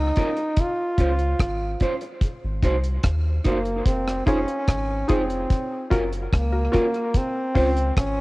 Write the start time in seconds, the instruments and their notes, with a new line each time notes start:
Already playing: sub bass C#2, trombone D#4
0.16 clean electric guitar C#4 F4 A#4, kick, closed hi-hat
0.37 muted clean electric guitar stroke, closed hi-hat
0.57 trombone F4, kick, closed hi-hat
0.98 sub bass C#2, clean electric guitar C#4 F4 C5, kick, closed hi-hat
1.19 closed hi-hat
1.39 sub bass G#1, kick, cross-stick, closed hi-hat
1.80 clean electric guitar C#4 F4 C5, kick, closed hi-hat
2.01 muted clean electric guitar stroke, closed hi-hat
2.21 kick, closed hi-hat
2.44 sub bass G#1
2.63 sub bass C2, clean electric guitar D#4 F#4 C5, kick, closed hi-hat
2.84 closed hi-hat
3.03 sub bass D#2, kick, cross-stick, closed hi-hat
3.44 sub bass F#1, trombone A#3, clean electric guitar D#4 F#4 C5, kick, closed hi-hat
3.65 closed hi-hat
3.86 sub bass F1, trombone C4, kick, closed hi-hat
4.08 cross-stick
4.26 sub bass F1, trombone C#4, clean electric guitar D#4 G#4 C5, synth stab D#4 F4 G#4, kick, closed hi-hat
4.48 closed hi-hat
4.68 sub bass G#1, kick, cross-stick, closed hi-hat
5.08 sub bass F1, trombone C4, synth stab D#4 F4 G#4, clean electric guitar D#4 G#4 C5, kick, closed hi-hat
5.30 closed hi-hat
5.50 kick, closed hi-hat
5.90 sub bass F#1, clean electric guitar C#4 F4 A#4, synth stab F4 F#4 A#4, kick, closed hi-hat
6.12 closed hi-hat
6.33 sub bass C#2, trombone A#3, kick, cross-stick, closed hi-hat
6.53 synth stab F#4 A#4
6.72 clean electric guitar C#4 F4 A#4, synth stab F4 F#4 A#4, kick, closed hi-hat
6.94 muted clean electric guitar stroke, closed hi-hat
7.14 trombone C4, kick, closed hi-hat
7.55 sub bass C#2, synth stab C#4 F4 C5, clean electric guitar C#4 F4 C5, kick, open hi-hat
7.77 closed hi-hat
7.97 sub bass G#1, trombone C#4, kick, cross-stick, closed hi-hat